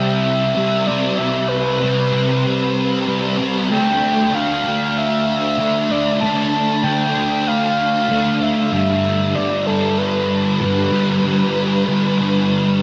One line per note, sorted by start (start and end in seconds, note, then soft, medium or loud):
0.00 0.54 C3 medium
0.00 0.55 G3 medium
0.00 0.57 C4 medium
0.00 0.88 E5 loud
0.54 1.17 C3 medium
0.54 0.89 G3 medium
0.54 0.86 C4 medium
0.87 1.19 G3 soft
0.87 1.20 C4 medium
0.87 1.19 D5 medium
1.18 1.79 C3 medium
1.18 1.82 G3 medium
1.18 1.83 C4 medium
1.18 1.50 E5 medium
1.48 3.38 B4 medium
1.81 2.44 C3 medium
1.81 2.14 G3 medium
1.81 2.11 C4 medium
2.12 3.06 G3 medium
2.12 3.08 C4 medium
3.06 3.68 C3 medium
3.06 3.40 G3 medium
3.06 3.37 C4 medium
3.38 3.70 G3 medium
3.38 3.68 C4 medium
3.69 4.31 D3 medium
3.69 4.33 A3 medium
3.69 4.35 D4 medium
3.69 4.36 G5 loud
4.32 5.57 D3 medium
4.32 4.67 A3 medium
4.32 4.64 D4 medium
4.32 4.99 F5 loud
4.64 5.59 A3 medium
4.64 5.61 D4 medium
4.97 5.93 E5 loud
5.58 6.20 D3 medium
5.58 5.91 A3 medium
5.58 5.89 D4 medium
5.89 6.22 A3 medium
5.89 6.24 D4 medium
5.89 6.20 D5 loud
6.21 6.82 D3 medium
6.21 6.84 A3 medium
6.21 6.85 A5 loud
6.25 6.87 D4 medium
6.83 7.47 D3 medium
6.83 7.17 A3 medium
6.83 7.14 D4 medium
6.83 7.49 G5 loud
7.15 8.10 A3 medium
7.15 8.12 D4 medium
7.47 8.44 F5 loud
8.08 8.70 D3 medium
8.08 8.43 A3 medium
8.08 8.40 D4 medium
8.40 8.72 A3 medium
8.40 11.90 D4 medium
8.40 8.72 E5 loud
8.71 9.34 G2 medium
8.71 9.36 D3 medium
8.71 9.38 G3 loud
8.71 9.37 E5 loud
9.34 10.60 G2 medium
9.34 9.68 D3 medium
9.34 9.66 G3 medium
9.34 9.68 D5 medium
9.66 10.61 D3 medium
9.66 10.63 G3 medium
9.66 10.00 A4 medium
9.98 12.82 B4 loud
10.60 11.21 G2 medium
10.60 10.93 D3 medium
10.60 10.91 G3 medium
10.91 11.23 D3 medium
10.91 11.25 G3 medium
11.23 11.84 G2 loud
11.23 11.86 D3 medium
11.23 11.88 G3 medium
11.85 12.49 G2 medium
11.85 12.19 D3 medium
11.85 12.15 G3 medium
12.17 12.82 D3 medium
12.17 12.82 G3 medium